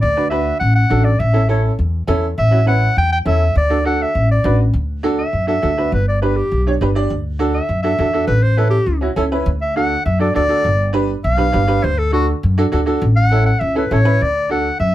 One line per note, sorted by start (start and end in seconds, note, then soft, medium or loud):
0.01 0.50 D2 loud
0.01 0.29 D5 loud
0.17 0.22 D4 medium
0.17 0.22 F#4 medium
0.17 0.22 B4 medium
0.30 0.52 D4 medium
0.30 0.52 F#4 medium
0.30 0.52 B4 medium
0.30 0.58 E5 medium
0.60 0.85 A1 medium
0.60 0.74 F#5 loud
0.75 1.06 F#5 loud
0.90 1.14 A1 loud
0.90 1.06 D4 medium
0.90 1.06 F#4 medium
0.90 1.06 A4 medium
1.04 1.20 D5 medium
1.19 1.67 A1 loud
1.19 1.49 E5 loud
1.33 1.39 C#4 medium
1.33 1.40 E4 medium
1.33 1.40 A4 medium
1.48 1.70 C#4 medium
1.48 1.70 E4 medium
1.48 1.70 A4 medium
1.48 1.64 C#5 medium
1.79 2.03 E2 medium
2.07 2.32 E2 loud
2.07 2.24 C#4 medium
2.07 2.24 E4 medium
2.07 2.24 A4 loud
2.38 2.85 A1 medium
2.38 2.66 E5 loud
2.51 2.57 C#4 medium
2.51 2.58 E4 medium
2.51 2.58 F#4 medium
2.66 2.88 C#4 medium
2.66 2.88 E4 medium
2.66 2.88 B4 medium
2.66 2.95 F#5 loud
2.97 3.21 E2 medium
2.97 3.11 G5 loud
3.12 3.19 G5 loud
3.25 3.50 E2 loud
3.25 3.42 C#4 medium
3.25 3.42 E4 medium
3.25 3.42 A4 medium
3.25 3.54 E5 loud
3.55 4.03 D2 loud
3.55 3.84 D5 loud
3.70 3.76 D4 medium
3.70 3.76 F#4 medium
3.70 3.76 A4 medium
3.85 4.06 D4 medium
3.85 4.06 F#4 medium
3.85 4.06 A4 medium
3.85 4.04 F#5 medium
4.02 4.30 E5 medium
4.15 4.39 A1 medium
4.31 4.58 D5 medium
4.44 4.68 A1 loud
4.44 4.60 D4 medium
4.44 4.60 F#4 medium
4.44 4.60 B4 medium
4.73 5.21 D2 medium
5.03 5.19 D4 medium
5.03 5.19 F#4 medium
5.03 5.19 A4 medium
5.18 5.47 E5 medium
5.33 5.57 F#2 medium
5.47 5.53 D4 medium
5.47 5.53 F#4 medium
5.47 5.53 A4 medium
5.47 5.91 E5 medium
5.62 5.87 D2 medium
5.62 5.68 D4 medium
5.62 5.68 F#4 medium
5.62 5.68 A4 medium
5.78 5.92 D4 medium
5.78 5.93 F#4 medium
5.78 5.93 B4 medium
5.92 6.40 G1 loud
5.92 6.07 B4 medium
6.08 6.21 D5 medium
6.22 6.38 D4 medium
6.22 6.38 G4 medium
6.22 6.38 B4 medium
6.37 6.65 G4 medium
6.52 6.75 B1 medium
6.67 6.72 D4 medium
6.67 6.72 G4 medium
6.67 6.72 C#5 medium
6.81 7.05 G1 medium
6.81 6.86 D4 medium
6.81 6.87 G4 medium
6.81 6.87 B4 medium
6.95 7.10 D4 medium
6.95 7.11 G4 medium
6.95 7.11 D5 medium
7.10 7.58 D2 loud
7.39 7.55 D4 medium
7.39 7.55 F#4 medium
7.39 7.56 A4 loud
7.54 7.82 E5 medium
7.69 7.93 F#2 medium
7.82 7.89 D4 medium
7.82 7.90 F#4 medium
7.82 7.90 A4 medium
7.82 8.26 E5 medium
7.99 8.23 E2 medium
7.99 8.04 D4 medium
7.99 8.04 F#4 medium
7.99 8.05 A4 medium
8.13 8.29 D4 medium
8.13 8.29 F#4 medium
8.13 8.29 A4 medium
8.27 8.75 A1 medium
8.27 8.44 B4 loud
8.43 8.60 C5 medium
8.57 8.73 C#4 medium
8.57 8.74 E4 medium
8.57 8.74 A4 medium
8.57 8.70 B4 medium
8.71 9.01 G4 medium
8.86 9.11 C#2 medium
9.01 9.07 C#4 medium
9.01 9.08 E4 medium
9.01 9.08 F#4 medium
9.16 9.40 C#2 medium
9.16 9.22 C#4 medium
9.16 9.22 E4 medium
9.16 9.22 A4 loud
9.32 9.47 C#4 medium
9.32 9.47 E4 medium
9.32 9.47 B4 medium
9.46 9.94 D2 loud
9.61 9.76 E5 medium
9.76 9.92 D4 medium
9.76 9.92 F#4 medium
9.76 9.92 A4 medium
9.76 10.05 F#5 loud
10.05 10.29 F#2 medium
10.05 10.20 E5 medium
10.19 10.25 D4 medium
10.19 10.26 F#4 medium
10.19 10.26 A4 medium
10.19 10.35 D5 medium
10.34 10.59 D2 loud
10.34 10.40 D4 medium
10.34 10.40 F#4 medium
10.34 10.41 A4 medium
10.34 10.93 D5 loud
10.49 10.64 D4 medium
10.49 10.65 F#4 medium
10.49 10.65 A4 medium
10.64 11.12 G1 loud
10.93 11.09 D4 medium
10.93 11.10 G4 medium
10.93 11.10 B4 loud
11.24 11.48 B1 loud
11.24 11.85 F5 loud
11.37 11.43 D4 medium
11.37 11.44 G4 medium
11.37 11.44 B4 medium
11.52 11.78 G1 loud
11.52 11.58 D4 medium
11.52 11.59 G4 medium
11.52 11.59 B4 medium
11.67 11.83 D4 medium
11.67 11.83 G4 medium
11.67 11.83 B4 medium
11.84 12.31 D2 loud
11.84 12.00 C5 loud
11.99 12.12 A4 medium
12.12 12.28 D4 medium
12.12 12.27 F#4 loud
12.12 12.29 F#4 medium
12.12 12.29 A4 medium
12.43 12.67 F#2 medium
12.58 12.63 D4 medium
12.58 12.63 F#4 medium
12.58 12.63 A4 loud
12.72 12.96 D2 medium
12.72 12.77 D4 medium
12.72 12.78 F#4 medium
12.72 12.78 A4 loud
12.86 13.01 D4 medium
12.86 13.02 F#4 medium
12.86 13.02 A4 medium
13.02 13.49 A1 loud
13.16 13.45 F#5 loud
13.31 13.47 C#4 medium
13.31 13.47 E4 medium
13.31 13.47 A4 medium
13.46 13.61 F#5 medium
13.60 13.85 C#2 medium
13.60 13.75 E5 loud
13.75 13.81 C#4 medium
13.75 13.81 E4 medium
13.75 13.81 A4 medium
13.75 13.94 B4 medium
13.91 14.15 A1 loud
13.91 13.96 C#4 medium
13.91 13.96 E4 medium
13.91 13.96 A4 medium
13.91 14.24 C#5 loud
14.05 14.20 C#4 medium
14.05 14.20 E4 medium
14.05 14.20 B4 medium
14.21 14.68 D2 medium
14.21 14.51 D5 loud
14.49 14.65 D4 medium
14.49 14.66 F#4 medium
14.49 14.66 A4 medium
14.49 14.78 F#5 medium
14.79 14.95 F#2 medium
14.79 14.95 E5 loud